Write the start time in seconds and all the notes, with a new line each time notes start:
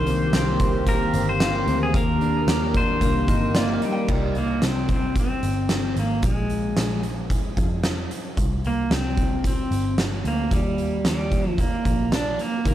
Already playing: C2 D#3 A#3 C4 G4 A#4 C5
0.07 C4, closed hi-hat
0.33 C2 G4, snare, closed hi-hat, tambourine
0.60 C4, kick, closed hi-hat
0.87 A#3 A#4, kick, closed hi-hat
1.14 G1 C4, closed hi-hat
1.29 C5
1.40 F4, snare, closed hi-hat, tambourine
1.55 G4
1.67 D2 C4, closed hi-hat
1.83 G#4
1.94 D#2 A#3 D4 A#4 F5, kick, closed hi-hat
2.21 D4, closed hi-hat
2.47 D#2 G4, snare, closed hi-hat, tambourine
2.74 D4 C5, kick, closed hi-hat
3.01 C2 A#3 C4 A#4, kick, closed hi-hat
3.28 G1 D#4, kick, closed hi-hat
3.55 A#3 F4 D5, snare, closed hi-hat, tambourine
3.68 G4
3.73 F5
3.82 G3 D#4, closed hi-hat
3.92 G5
4.08 C2 G3, kick, crash
4.35 A#3, closed hi-hat
4.62 C2 C4, snare, closed hi-hat
4.88 kick, closed hi-hat
4.92 C4
5.16 C4, kick, closed hi-hat
5.43 G1, closed hi-hat
5.69 snare, closed hi-hat
5.96 G#1 A#3, closed hi-hat
6.23 A#1 G#3, kick, closed hi-hat
6.50 closed hi-hat
6.77 A#1, snare, closed hi-hat
7.03 closed hi-hat
7.30 kick, closed hi-hat
7.57 F2, kick, closed hi-hat
7.83 snare, closed hi-hat
8.11 closed hi-hat
8.37 C2, kick, closed hi-hat
8.64 A#3, closed hi-hat
8.91 C2 C4, snare, closed hi-hat
9.17 kick, closed hi-hat
9.44 C4, kick, closed hi-hat
9.71 G1, closed hi-hat
9.98 snare, closed hi-hat
10.25 D2 A#3, closed hi-hat
10.51 D#2 G3, kick, closed hi-hat
10.78 closed hi-hat
11.05 D#2 G3, snare, closed hi-hat
11.32 kick, closed hi-hat
11.50 F3
11.58 A#3, kick, closed hi-hat
11.85 A#1, kick, closed hi-hat
12.12 D4, snare, closed hi-hat
12.39 A#3, closed hi-hat
12.65 C2 D#3 A#3 A#4, kick, closed hi-hat